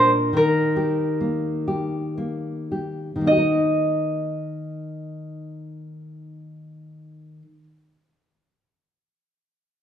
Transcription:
0, 0, Header, 1, 3, 480
1, 0, Start_track
1, 0, Key_signature, -3, "major"
1, 0, Tempo, 852273
1, 193, Time_signature, 3, 2, 24, 8
1, 682, Tempo, 970874
1, 1162, Tempo, 1083032
1, 1642, Tempo, 1121495
1, 4450, End_track
2, 0, Start_track
2, 0, Title_t, "Harp"
2, 0, Program_c, 0, 46
2, 0, Note_on_c, 0, 70, 68
2, 204, Note_off_c, 0, 70, 0
2, 207, Note_on_c, 0, 70, 72
2, 1298, Note_off_c, 0, 70, 0
2, 1645, Note_on_c, 0, 75, 66
2, 3470, Note_off_c, 0, 75, 0
2, 4450, End_track
3, 0, Start_track
3, 0, Title_t, "Nylon-string guitar"
3, 0, Program_c, 1, 24
3, 0, Note_on_c, 1, 46, 53
3, 0, Note_on_c, 1, 62, 44
3, 173, Note_off_c, 1, 46, 0
3, 183, Note_off_c, 1, 62, 0
3, 186, Note_on_c, 1, 51, 55
3, 430, Note_on_c, 1, 67, 46
3, 679, Note_on_c, 1, 58, 47
3, 906, Note_off_c, 1, 67, 0
3, 912, Note_on_c, 1, 67, 42
3, 1153, Note_off_c, 1, 58, 0
3, 1159, Note_on_c, 1, 58, 42
3, 1393, Note_off_c, 1, 67, 0
3, 1399, Note_on_c, 1, 67, 41
3, 1589, Note_off_c, 1, 51, 0
3, 1594, Note_on_c, 1, 51, 39
3, 1613, Note_off_c, 1, 58, 0
3, 1618, Note_on_c, 1, 58, 35
3, 1636, Note_off_c, 1, 67, 0
3, 1641, Note_on_c, 1, 63, 37
3, 1663, Note_on_c, 1, 67, 40
3, 1686, Note_off_c, 1, 67, 0
3, 1688, Note_on_c, 1, 70, 43
3, 3420, Note_off_c, 1, 51, 0
3, 3444, Note_off_c, 1, 58, 0
3, 3466, Note_off_c, 1, 63, 0
3, 3512, Note_off_c, 1, 70, 0
3, 4450, End_track
0, 0, End_of_file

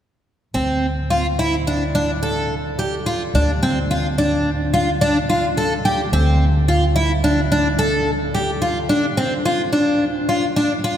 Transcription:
0, 0, Header, 1, 3, 480
1, 0, Start_track
1, 0, Tempo, 556586
1, 467, Time_signature, 5, 2, 24, 8
1, 9463, End_track
2, 0, Start_track
2, 0, Title_t, "Twelve-string acoustic guitar"
2, 0, Program_c, 0, 25
2, 468, Note_on_c, 0, 60, 58
2, 737, Note_off_c, 0, 60, 0
2, 953, Note_on_c, 0, 65, 55
2, 1086, Note_off_c, 0, 65, 0
2, 1199, Note_on_c, 0, 64, 57
2, 1331, Note_off_c, 0, 64, 0
2, 1443, Note_on_c, 0, 62, 55
2, 1574, Note_off_c, 0, 62, 0
2, 1680, Note_on_c, 0, 62, 59
2, 1813, Note_off_c, 0, 62, 0
2, 1920, Note_on_c, 0, 69, 61
2, 2187, Note_off_c, 0, 69, 0
2, 2404, Note_on_c, 0, 67, 54
2, 2536, Note_off_c, 0, 67, 0
2, 2641, Note_on_c, 0, 65, 56
2, 2774, Note_off_c, 0, 65, 0
2, 2888, Note_on_c, 0, 62, 65
2, 3019, Note_off_c, 0, 62, 0
2, 3127, Note_on_c, 0, 60, 55
2, 3259, Note_off_c, 0, 60, 0
2, 3370, Note_on_c, 0, 65, 58
2, 3501, Note_off_c, 0, 65, 0
2, 3607, Note_on_c, 0, 62, 56
2, 3873, Note_off_c, 0, 62, 0
2, 4084, Note_on_c, 0, 65, 60
2, 4217, Note_off_c, 0, 65, 0
2, 4324, Note_on_c, 0, 62, 66
2, 4456, Note_off_c, 0, 62, 0
2, 4566, Note_on_c, 0, 65, 55
2, 4698, Note_off_c, 0, 65, 0
2, 4807, Note_on_c, 0, 69, 56
2, 4939, Note_off_c, 0, 69, 0
2, 5045, Note_on_c, 0, 67, 56
2, 5178, Note_off_c, 0, 67, 0
2, 5286, Note_on_c, 0, 60, 65
2, 5552, Note_off_c, 0, 60, 0
2, 5764, Note_on_c, 0, 65, 57
2, 5896, Note_off_c, 0, 65, 0
2, 5999, Note_on_c, 0, 64, 57
2, 6133, Note_off_c, 0, 64, 0
2, 6243, Note_on_c, 0, 62, 62
2, 6375, Note_off_c, 0, 62, 0
2, 6483, Note_on_c, 0, 62, 61
2, 6615, Note_off_c, 0, 62, 0
2, 6715, Note_on_c, 0, 69, 68
2, 6983, Note_off_c, 0, 69, 0
2, 7197, Note_on_c, 0, 67, 61
2, 7330, Note_off_c, 0, 67, 0
2, 7431, Note_on_c, 0, 65, 54
2, 7566, Note_off_c, 0, 65, 0
2, 7670, Note_on_c, 0, 62, 67
2, 7805, Note_off_c, 0, 62, 0
2, 7912, Note_on_c, 0, 60, 57
2, 8046, Note_off_c, 0, 60, 0
2, 8154, Note_on_c, 0, 65, 62
2, 8287, Note_off_c, 0, 65, 0
2, 8387, Note_on_c, 0, 62, 58
2, 8655, Note_off_c, 0, 62, 0
2, 8872, Note_on_c, 0, 65, 60
2, 9005, Note_off_c, 0, 65, 0
2, 9110, Note_on_c, 0, 62, 68
2, 9243, Note_off_c, 0, 62, 0
2, 9350, Note_on_c, 0, 65, 58
2, 9463, Note_off_c, 0, 65, 0
2, 9463, End_track
3, 0, Start_track
3, 0, Title_t, "Upright bass"
3, 0, Program_c, 1, 32
3, 467, Note_on_c, 1, 38, 59
3, 2842, Note_off_c, 1, 38, 0
3, 2875, Note_on_c, 1, 38, 60
3, 5244, Note_off_c, 1, 38, 0
3, 5280, Note_on_c, 1, 38, 61
3, 7641, Note_off_c, 1, 38, 0
3, 9463, End_track
0, 0, End_of_file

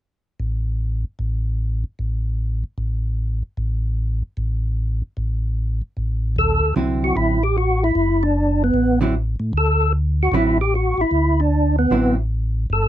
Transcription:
0, 0, Header, 1, 4, 480
1, 0, Start_track
1, 0, Tempo, 397088
1, 4, Time_signature, 4, 2, 24, 8
1, 15572, End_track
2, 0, Start_track
2, 0, Title_t, "Tonewheel organ"
2, 0, Program_c, 0, 16
2, 7718, Note_on_c, 0, 69, 88
2, 8153, Note_off_c, 0, 69, 0
2, 8511, Note_on_c, 0, 66, 85
2, 8653, Note_off_c, 0, 66, 0
2, 8663, Note_on_c, 0, 64, 92
2, 8983, Note_off_c, 0, 64, 0
2, 8987, Note_on_c, 0, 67, 78
2, 9146, Note_off_c, 0, 67, 0
2, 9159, Note_on_c, 0, 66, 78
2, 9470, Note_off_c, 0, 66, 0
2, 9477, Note_on_c, 0, 64, 91
2, 9947, Note_on_c, 0, 62, 91
2, 9956, Note_off_c, 0, 64, 0
2, 10431, Note_off_c, 0, 62, 0
2, 10442, Note_on_c, 0, 59, 82
2, 10872, Note_off_c, 0, 59, 0
2, 11574, Note_on_c, 0, 69, 100
2, 11999, Note_off_c, 0, 69, 0
2, 12362, Note_on_c, 0, 66, 85
2, 12505, Note_on_c, 0, 64, 88
2, 12512, Note_off_c, 0, 66, 0
2, 12791, Note_off_c, 0, 64, 0
2, 12828, Note_on_c, 0, 67, 97
2, 12984, Note_off_c, 0, 67, 0
2, 12998, Note_on_c, 0, 66, 73
2, 13308, Note_off_c, 0, 66, 0
2, 13311, Note_on_c, 0, 64, 106
2, 13779, Note_on_c, 0, 62, 80
2, 13790, Note_off_c, 0, 64, 0
2, 14217, Note_off_c, 0, 62, 0
2, 14248, Note_on_c, 0, 59, 73
2, 14691, Note_off_c, 0, 59, 0
2, 15385, Note_on_c, 0, 69, 83
2, 15572, Note_off_c, 0, 69, 0
2, 15572, End_track
3, 0, Start_track
3, 0, Title_t, "Hollow-body jazz guitar"
3, 0, Program_c, 1, 26
3, 8171, Note_on_c, 1, 50, 48
3, 8172, Note_on_c, 1, 54, 51
3, 8179, Note_on_c, 1, 60, 54
3, 8180, Note_on_c, 1, 64, 52
3, 8904, Note_off_c, 1, 50, 0
3, 8905, Note_off_c, 1, 54, 0
3, 8908, Note_off_c, 1, 60, 0
3, 8909, Note_off_c, 1, 64, 0
3, 10888, Note_on_c, 1, 50, 64
3, 10898, Note_on_c, 1, 54, 71
3, 10901, Note_on_c, 1, 60, 59
3, 10905, Note_on_c, 1, 64, 75
3, 11035, Note_off_c, 1, 50, 0
3, 11039, Note_off_c, 1, 54, 0
3, 11041, Note_off_c, 1, 60, 0
3, 11043, Note_off_c, 1, 64, 0
3, 12491, Note_on_c, 1, 50, 58
3, 12500, Note_on_c, 1, 54, 66
3, 12503, Note_on_c, 1, 60, 62
3, 12505, Note_on_c, 1, 64, 70
3, 12774, Note_off_c, 1, 50, 0
3, 12778, Note_off_c, 1, 54, 0
3, 12780, Note_off_c, 1, 60, 0
3, 12781, Note_off_c, 1, 64, 0
3, 14397, Note_on_c, 1, 50, 54
3, 14404, Note_on_c, 1, 54, 52
3, 14408, Note_on_c, 1, 60, 61
3, 14411, Note_on_c, 1, 64, 65
3, 14685, Note_off_c, 1, 50, 0
3, 14689, Note_off_c, 1, 54, 0
3, 14691, Note_off_c, 1, 60, 0
3, 14692, Note_off_c, 1, 64, 0
3, 15572, End_track
4, 0, Start_track
4, 0, Title_t, "Tonewheel organ"
4, 0, Program_c, 2, 16
4, 478, Note_on_c, 2, 33, 66
4, 1263, Note_off_c, 2, 33, 0
4, 1437, Note_on_c, 2, 33, 72
4, 2224, Note_off_c, 2, 33, 0
4, 2404, Note_on_c, 2, 33, 65
4, 3188, Note_off_c, 2, 33, 0
4, 3358, Note_on_c, 2, 33, 63
4, 4145, Note_off_c, 2, 33, 0
4, 4319, Note_on_c, 2, 33, 77
4, 5106, Note_off_c, 2, 33, 0
4, 5283, Note_on_c, 2, 33, 74
4, 6068, Note_off_c, 2, 33, 0
4, 6248, Note_on_c, 2, 33, 70
4, 7031, Note_off_c, 2, 33, 0
4, 7214, Note_on_c, 2, 33, 68
4, 7690, Note_on_c, 2, 38, 82
4, 7993, Note_off_c, 2, 33, 0
4, 8137, Note_off_c, 2, 38, 0
4, 8170, Note_on_c, 2, 36, 73
4, 8617, Note_off_c, 2, 36, 0
4, 8654, Note_on_c, 2, 33, 87
4, 9565, Note_off_c, 2, 33, 0
4, 9613, Note_on_c, 2, 30, 84
4, 10524, Note_off_c, 2, 30, 0
4, 10562, Note_on_c, 2, 33, 82
4, 11313, Note_off_c, 2, 33, 0
4, 11358, Note_on_c, 2, 45, 64
4, 11514, Note_off_c, 2, 45, 0
4, 11521, Note_on_c, 2, 38, 85
4, 12436, Note_off_c, 2, 38, 0
4, 12471, Note_on_c, 2, 33, 85
4, 13226, Note_off_c, 2, 33, 0
4, 13269, Note_on_c, 2, 33, 39
4, 13354, Note_off_c, 2, 33, 0
4, 13432, Note_on_c, 2, 38, 85
4, 14350, Note_off_c, 2, 38, 0
4, 14390, Note_on_c, 2, 33, 81
4, 15308, Note_off_c, 2, 33, 0
4, 15350, Note_on_c, 2, 31, 86
4, 15572, Note_off_c, 2, 31, 0
4, 15572, End_track
0, 0, End_of_file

